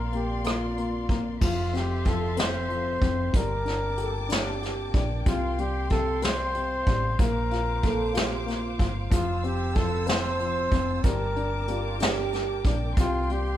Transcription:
0.00 1.37 A#1 medium
0.00 0.12 A#3 medium
0.00 1.37 A#3 medium
0.00 0.13 A#4 loud
0.00 1.39 D5 medium
0.00 1.37 F5 medium
0.00 1.39 C6 medium
0.12 0.43 A#3 medium
0.12 0.48 G4 medium
0.12 closed hi-hat soft
0.44 0.75 A#3 medium
0.44 1.18 F4 medium
0.44 cross-stick loud
0.44 closed hi-hat medium
0.77 1.08 A#3 soft
0.77 closed hi-hat soft
1.09 1.40 A#3 medium
1.09 kick medium
1.09 closed hi-hat soft
1.41 2.98 F1 loud
1.41 2.04 F3 medium
1.41 1.78 F4 medium
1.41 3.32 A4 medium
1.41 3.32 E5 medium
1.41 3.32 F5 medium
1.41 3.32 C6 medium
1.41 kick loud
1.41 crash medium
1.73 2.35 C4 soft
1.73 2.09 G4 medium
1.73 snare soft
1.73 closed hi-hat soft
2.05 2.67 F3 medium
2.05 2.40 A4 medium
2.05 kick medium
2.05 closed hi-hat medium
2.37 2.99 C4 medium
2.37 3.38 C5 loud
2.37 snare loud
2.37 closed hi-hat medium
2.69 3.31 F3 medium
2.69 closed hi-hat soft
3.01 3.32 F1 medium
3.01 3.32 C4 medium
3.01 kick loud
3.01 closed hi-hat medium
3.32 4.90 G1 loud
3.32 5.22 G3 medium
3.32 7.15 A#3 medium
3.32 4.63 A#4 medium
3.32 7.14 G5 medium
3.32 5.24 A5 medium
3.32 5.24 D6 medium
3.32 kick loud
3.32 closed hi-hat medium
3.65 4.27 D4 soft
3.65 snare soft
3.65 closed hi-hat soft
3.97 4.60 G4 medium
3.97 4.12 A4 loud
3.97 closed hi-hat medium
4.29 4.92 D4 medium
4.29 4.60 G4 medium
4.29 snare loud
4.29 closed hi-hat medium
4.62 5.24 G4 soft
4.62 5.07 G4 medium
4.62 snare soft
4.62 closed hi-hat soft
4.94 5.24 A#1 medium
4.94 5.25 D4 medium
4.94 kick loud
4.94 closed hi-hat medium
5.26 6.83 C2 loud
5.26 5.89 C3 medium
5.26 5.61 F4 medium
5.26 11.00 F5 medium
5.26 7.17 C6 medium
5.26 kick loud
5.26 closed hi-hat loud
5.58 6.20 G3 medium
5.58 5.91 G4 medium
5.58 closed hi-hat soft
5.90 6.54 C3 medium
5.90 6.25 A4 medium
5.90 kick medium
5.90 closed hi-hat medium
6.22 6.85 G3 medium
6.22 7.21 C5 loud
6.22 snare loud
6.22 closed hi-hat medium
6.54 7.17 C3 medium
6.54 closed hi-hat soft
6.87 7.17 A1 medium
6.87 7.18 G3 medium
6.87 kick medium
6.87 closed hi-hat medium
7.18 8.76 A#1 medium
7.18 7.81 A#3 medium
7.18 8.48 A#4 medium
7.18 9.09 C5 medium
7.18 9.09 D6 medium
7.18 kick loud
7.18 closed hi-hat medium
7.51 8.12 F4 soft
7.51 snare soft
7.51 closed hi-hat soft
7.83 8.44 A#3 medium
7.83 8.13 A4 loud
7.83 kick medium
7.83 closed hi-hat medium
8.14 8.77 F4 medium
8.14 8.48 G4 medium
8.14 snare loud
8.14 closed hi-hat medium
8.46 9.09 A#3 soft
8.46 8.96 F4 medium
8.46 snare soft
8.46 closed hi-hat soft
8.78 9.10 G1 medium
8.78 9.10 F4 soft
8.78 kick medium
8.78 closed hi-hat medium
9.10 10.68 F1 loud
9.10 9.74 F3 medium
9.10 9.46 F4 medium
9.10 11.02 C5 medium
9.10 12.94 A5 medium
9.10 11.02 E6 medium
9.10 kick loud
9.10 closed hi-hat loud
9.43 10.05 C4 soft
9.43 9.77 G4 medium
9.43 closed hi-hat soft
9.75 10.38 F3 medium
9.75 10.09 A4 medium
9.75 kick medium
9.75 closed hi-hat medium
10.07 10.71 C4 medium
10.07 11.03 C5 loud
10.07 snare loud
10.07 closed hi-hat medium
10.40 11.02 F3 medium
10.40 closed hi-hat soft
10.72 11.02 F1 medium
10.72 11.03 C4 medium
10.72 kick medium
10.72 closed hi-hat medium
11.03 12.61 G1 medium
11.03 11.67 G3 medium
11.03 12.95 A#4 medium
11.03 12.29 A#4 medium
11.03 13.57 G5 medium
11.03 12.95 D6 medium
11.03 kick loud
11.03 closed hi-hat medium
11.36 11.99 D4 soft
11.36 closed hi-hat soft
11.68 12.32 G3 medium
11.68 11.99 F4 loud
11.68 closed hi-hat medium
12.00 12.64 D4 medium
12.00 12.77 G4 loud
12.00 snare loud
12.00 closed hi-hat medium
12.33 12.95 G3 soft
12.33 snare soft
12.33 closed hi-hat soft
12.65 12.95 A#1 medium
12.65 12.96 D4 medium
12.65 kick medium
12.65 closed hi-hat medium
12.96 13.57 C2 loud
12.96 13.57 C3 medium
12.96 13.57 A#3 medium
12.96 13.33 F4 medium
12.96 13.57 F5 medium
12.96 13.57 C6 medium
12.96 kick loud
12.96 closed hi-hat loud
13.30 13.57 G3 medium
13.30 13.57 G4 medium
13.30 closed hi-hat soft

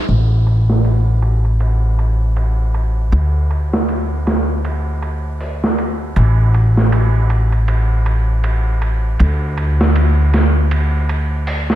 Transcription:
0.08 3.09 A1 medium
0.08 ride medium
0.47 ride medium
0.69 snare soft
0.84 ride medium
1.22 ride medium
1.45 ride soft
1.60 ride medium
1.99 ride medium
2.36 ride medium
2.74 ride medium
3.12 6.13 D2 medium
3.12 ride medium
3.51 ride medium
3.73 snare medium
3.89 ride medium
4.27 snare soft
4.27 ride medium
4.65 ride medium
5.02 ride medium
5.41 open hi-hat medium
5.64 snare soft
5.78 ride medium
6.16 9.17 A1 medium
6.16 ride medium
6.54 ride medium
6.77 snare soft
6.92 ride medium
7.30 ride medium
7.52 ride soft
7.68 ride medium
8.06 ride medium
8.44 ride medium
8.82 ride medium
9.20 11.75 D2 medium
9.20 ride medium
9.57 ride medium
9.81 snare medium
9.96 ride medium
10.34 snare soft
10.34 ride medium
10.71 ride medium
11.09 ride medium
11.47 open hi-hat medium
11.70 snare soft

